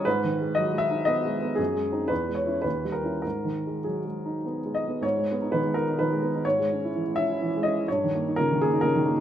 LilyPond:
<<
  \new Staff \with { instrumentName = "Upright piano" } { \time 3/4 \key gis \minor \tempo 4 = 122 b'4 dis''8 e''8 dis''4 | gis'4 b'8 cis''8 b'8 ais'8 | ais'4 gis'4 r8 dis''8 | cis''4 b'8 ais'8 b'4 |
cis''4. e''4 dis''8 | cis''4 ais'8 gis'8 ais'4 | }
  \new Staff \with { instrumentName = "Upright piano" } { \clef bass \time 3/4 \key gis \minor \tuplet 3/2 { gis,8 dis8 gis8 fis8 gis8 dis'8 b8 gis8 b8 } | \tuplet 3/2 { fis,8 gis8 <bis dis'>8 e,8 gis8 <cis' e'>8 dis,8 g8 <cis' e'>8 } | \tuplet 3/2 { gis,8 dis8 gis8 fis8 gis8 dis'8 b8 gis8 b8 } | gis,16 gis16 b16 dis'16 dis16 gis16 b16 dis'16 dis16 gis16 b16 dis'16 |
gis,16 gis16 cis'16 e'16 e16 gis16 cis'16 e'16 e16 gis16 cis'16 e'16 | g,16 dis16 ais16 dis'16 cis16 dis16 ais16 dis'16 cis16 dis16 ais16 dis'16 | }
>>